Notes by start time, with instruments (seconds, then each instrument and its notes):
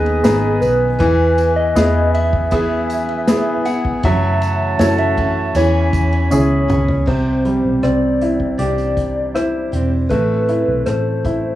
Already playing: fingered electric bass D#2, grand piano D#3 B3 D#4 G#4 B4, steel-string acoustic guitar D#3 G#3 B3 D#4, soft synth lead G#4, woodwind section B4 D#5 G#5 D#6
0.06 ride
0.23 fingered electric bass G#1, grand piano B3 D#4 G#4, snare, ride, tambourine
0.61 fingered electric bass B1, soft synth lead B4, ride, tambourine
0.99 fingered electric bass E2, steel-string acoustic guitar E3 B3 E4, grand piano E3, woodwind section E4, soft synth lead B4, kick, ride, tambourine
1.04 steel-string acoustic guitar G#4
1.38 ride, tambourine
1.56 soft synth lead D#5
1.75 fingered electric bass E2, grand piano B3 E4 G#4, snare, ride, tambourine
2.14 soft synth lead E5, ride
2.33 kick
2.51 steel-string acoustic guitar E3 B3 E4 G#4, grand piano B3 E4 G#4, kick, ride, tambourine
2.90 ride, tambourine
3.09 ride
3.28 grand piano B3 E4 G#4, snare, ride, tambourine
3.65 steel-string acoustic guitar B3 E4 G#4, soft synth lead F#5, ride, tambourine
3.85 kick
4.03 steel-string acoustic guitar F#2 C#3 E3 A3 C#4 F#4, fingered electric bass F#2, grand piano F#3, woodwind section C#5 F#5 A5, soft synth lead E5, kick, ride, tambourine
4.42 ride, tambourine
4.79 fingered electric bass F#2, grand piano E4 F#4 A4, soft synth lead C#5, snare, ride, tambourine
4.98 soft synth lead E5, ride
5.17 steel-string acoustic guitar E3 A3 C#4 F#4, kick, ride
5.55 fingered electric bass E2, steel-string acoustic guitar E3 B3 C#4 G#4, grand piano E3, soft synth lead C#5, woodwind section G#5 B5, ride, tambourine
5.93 fingered electric bass E2, kick, ride, tambourine
6.13 ride
6.31 fingered electric bass C#2, grand piano C#4 E4 G#4, high tom, tambourine
6.68 fingered electric bass C#2, steel-string acoustic guitar B3 C#4 G#4, mid tom, tambourine
6.88 floor tom
7.06 fingered electric bass C2, steel-string acoustic guitar C3 E3 C4, grand piano C3, soft synth lead C5, kick, crash
7.10 steel-string acoustic guitar D4 G4
7.45 grand piano G3, closed hi-hat
7.64 fingered electric bass B1
7.83 fingered electric bass C2, grand piano C4, soft synth lead D5, cross-stick, closed hi-hat
8.21 grand piano E4, closed hi-hat
8.40 kick
8.58 fingered electric bass C2, steel-string acoustic guitar E3 C4 D4 G4, grand piano G4, soft synth lead D5, closed hi-hat
8.78 closed hi-hat
8.97 kick, closed hi-hat
9.35 grand piano E4, soft synth lead C5, cross-stick, closed hi-hat
9.72 fingered electric bass E1, steel-string acoustic guitar C4 D4 G4, closed hi-hat
10.09 fingered electric bass A1, steel-string acoustic guitar A2 E3 A3 C4, grand piano A3, soft synth lead B4, kick, closed hi-hat
10.13 steel-string acoustic guitar E4 A4
10.49 grand piano E4, closed hi-hat
10.68 fingered electric bass B1
10.86 fingered electric bass A1, grand piano A4, soft synth lead C5, cross-stick, closed hi-hat
11.25 grand piano E4, kick, closed hi-hat